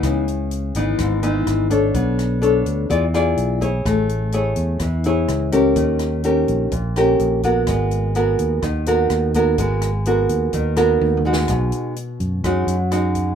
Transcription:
<<
  \new Staff \with { instrumentName = "Nylon-string guitar" } { \time 4/4 \key gis \minor \tempo 4 = 126 << { <e b dis'>8 r4 <e b dis'>4 <e b dis'>4 <d' a' cis''>8~ | <d' a' cis''>4 <d' a' cis''>4 <f' gis' d''>8 <f' gis' d''>4 <e' gis' cis''>8~ | <e' gis' cis''>4 <e' gis' cis''>4 r8 <e' gis' cis''>4 <cis' g' ais'>8~ | <cis' g' ais'>4 <cis' g' ais'>4 r8 <cis' g' ais'>4 <b fis' ais'>8~ |
<b fis' ais'>4 <b fis' ais'>4 r8 <b fis' ais'>4 <b fis' ais'>8 | <b fis' ais'>8 r8 <b fis' ais'>4. <b fis' ais'>4 <gis dis' fis'>8~ | \key b \major <gis dis' fis'>4 r4 <gis dis' fis'>8 r8 <gis dis' fis'>4 | } \\ { cis2 gis,2 | b2 e2 | a2 e2 | dis2 ais,2 |
gis2 dis2 | gis2 dis2 | b,2 fis2 | } >> }
  \new Staff \with { instrumentName = "Fingered electric bass" } { \clef bass \time 4/4 \key gis \minor cis,4. gis,,8 gis,,4 gis,,4 | b,,4. d,8 e,4 b,,4 | a,,4. e,8 e,4 cis,4 | dis,4. ais,,8 ais,,4 ais,,4 |
gis,,4. dis,8 dis,4 dis,4 | gis,,4. dis,8 dis,4 dis,4 | \key b \major b,,8 r4 fis,8 fis,8 fis,4. | }
  \new DrumStaff \with { instrumentName = "Drums" } \drummode { \time 4/4 <hh bd ss>8 hh8 hh8 <hh bd>8 <hh bd ss>8 hh8 <hh ss>8 <hh bd>8 | <hh bd>8 <hh ss>8 hh8 <hh bd>8 <hh bd>8 <hh ss>8 hh8 <hh bd>8 | <hh bd ss>8 hh8 hh8 <hh bd>8 <hh bd ss>8 hh8 <hh ss>8 <hh bd>8 | <hh bd>8 <hh ss>8 hh8 <hh bd>8 <hh bd>8 <hh ss>8 hh8 <hh bd>8 |
<hh bd ss>8 hh8 hh8 <hh bd>8 <hh bd ss>8 hh8 <hh ss>8 <hh bd>8 | <hh bd>8 <hh ss>8 hh8 <hh bd>8 <hh bd>8 <hh ss>8 \tuplet 3/2 { tommh8 toml8 sn8 } | <hh bd ss>8 hh8 hh8 <hh bd>8 <hh bd ss>8 hh8 <hh ss>8 <hh bd>8 | }
>>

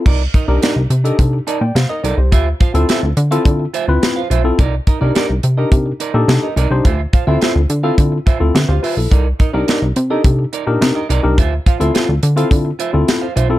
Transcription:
<<
  \new Staff \with { instrumentName = "Clean electric guitar" } { \time 4/4 \key c \dorian \tempo 4 = 106 <ees' bes' d''>16 r16 <ees' bes' ees''>16 <ees' bes' d''>16 <ees' bes' d''>16 r8 <ees' bes' ees''>16 r8 <ees' bes' d''>16 r8 <ees' bes' ees''>16 <ees' bes' d''>16 r16 | <f' c'' e''>16 r16 <f' c'' f''>16 <f' c'' e''>16 <f' c'' e''>16 r8 <f' c'' f''>16 r8 <f' c'' e''>16 r8 <f' c'' f''>16 <f' c'' e''>16 r16 | <ees' bes' d''>16 r16 <ees' bes' ees''>16 <ees' bes' d''>16 <ees' bes' d''>16 r8 <ees' bes' ees''>16 r8 <ees' bes' d''>16 r8 <ees' bes' ees''>16 <ees' bes' d''>16 r16 | <f' c'' e''>16 r16 <f' c'' f''>16 <f' c'' e''>16 <f' c'' e''>16 r8 <f' c'' f''>16 r8 <f' c'' e''>16 r8 <f' c'' f''>16 <f' c'' e''>16 r16 |
<ees' bes' d''>16 r16 <ees' bes' ees''>16 <ees' bes' d''>16 <ees' bes' d''>16 r8 <ees' bes' ees''>16 r8 <ees' bes' d''>16 r8 <ees' bes' ees''>16 <ees' bes' d''>16 r16 | <f' c'' e''>16 r16 <f' c'' f''>16 <f' c'' e''>16 <f' c'' e''>16 r8 <f' c'' f''>16 r8 <f' c'' e''>16 r8 <f' c'' f''>16 <f' c'' e''>16 r16 | }
  \new Staff \with { instrumentName = "Tine electric piano" } { \time 4/4 \key c \dorian << { r2 r8 <ees'' a''>16 <d'' g''>16 <c'' f''>16 <bes' ees''>16 <a' d''>16 <g' c''>16~ | <g' c''>16 r2. r8. | r1 | r2. <b' e''>16 <g' c''>16 <f' b'>16 <e' a'>16~ |
<e' a'>16 r2. r8. | r1 | } \\ { r8. <d' ees' g' bes'>8 r8 <d' ees' g' a'>8 r4. r16 | r8. <c' e' f' a'>8 r8 <c' e' f' a'>8 r8 <c' e' f' b'>8 r8 <c' e' f' a'>16 | r8. <d' ees' g' bes'>8 r8 <d' ees' g' bes'>8 r8 <d' ees' g' a'>8 r8 <d' ees' g' c''>16 | r8. <c' e' f' a'>8 r8 <c' e' f' a'>8 r8 <c' e' f' a'>8 r8. |
r8. <d' ees' g' bes'>8 r8 <d' ees' g' a'>8 r8 <d' ees' g' bes'>8 r8 <d' ees' g' bes'>16 | r8. <c' e' f' a'>8 r8 <c' e' f' a'>8 r8 <c' e' f' a'>8 r8 <c' e' f' a'>16 | } >> }
  \new Staff \with { instrumentName = "Analog synth bass" } { \clef bass \time 4/4 \key c \dorian c,8 r16 c,16 r16 c,16 c8 c8 r16 bes,16 c16 r16 c,16 c,16 | d,8 r16 d,16 r16 d,16 d8 d8 r16 d,16 r8 b,,8 | c,8 r16 c,16 r16 c,16 c8 c8 r16 bes,16 c16 r16 c,16 c,16 | d,8 r16 d,16 r16 d,16 d8 d8 r16 d,16 d16 d,16 r16 b,,16 |
c,8 r16 c,16 r16 c,16 c8 c8 r16 bes,16 c16 r16 c,16 c,16 | d,8 r16 d,16 r16 d,16 d8 d8 r16 d,16 r8 b,,8 | }
  \new DrumStaff \with { instrumentName = "Drums" } \drummode { \time 4/4 <cymc bd>8 <hh bd>8 <hh sn>8 hh16 hh16 <hh bd>8 hh8 <hh sn>8 hh8 | <hh bd>8 <hh bd>16 hh16 <hh sn>8 hh16 hh16 <hh bd>8 hh8 <hh sn>8 hh8 | <hh bd>8 <hh bd>8 <hh sn>8 hh8 <hh bd>8 hh8 <hh sn>8 hh8 | <hh bd>8 <hh bd>8 <hh sn>8 hh8 <hh bd>8 <hh bd>8 <hh sn>8 hho8 |
<hh bd>8 <hh bd>8 <hh sn>8 hh8 <hh bd>8 hh8 <hh sn>8 hh8 | <hh bd>8 <hh bd>16 hh16 <hh sn>8 hh16 hh16 <hh bd>8 hh8 <hh sn>8 hh8 | }
>>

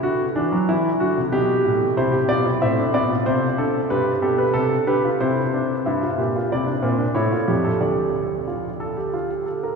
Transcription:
<<
  \new Staff \with { instrumentName = "Grand piano" } { \time 3/4 \key c \major \tempo 4 = 92 << { r2. | c''8 d''8 e''8 d''8 c''8 a'8 | b'8 g'8 r8 b'8 c''4 | \key d \minor e''4 d''4 cis''4 |
d''2~ d''8 r8 | } \\ { fis'8 d'8 e'8 fis'8 g'4 | e'16 g'16 f'16 e'16 c'16 d'16 e'16 f'4~ f'16 | g'8 a'16 b'16 a'8 g'16 f'16 e'8 d'8 | e'16 f'16 g'16 f'16 e'16 d'16 c'16 d'16 e'16 f'16 g'16 a'16 |
g'4 f'8 a'16 g'16 f'16 g'16 a'16 bes'16 | } >> }
  \new Staff \with { instrumentName = "Grand piano" } { \clef bass \time 3/4 \key c \major d8 e16 fis16 e8 d16 c16 b,8 a,8 | c8 b,8 a,8 b,8 c8 d8 | g,8 b,8 c8 d8 c4 | \key d \minor g,8 bes,8 c8 bes,8 a,8 f,8 |
d,2~ d,8 r8 | }
>>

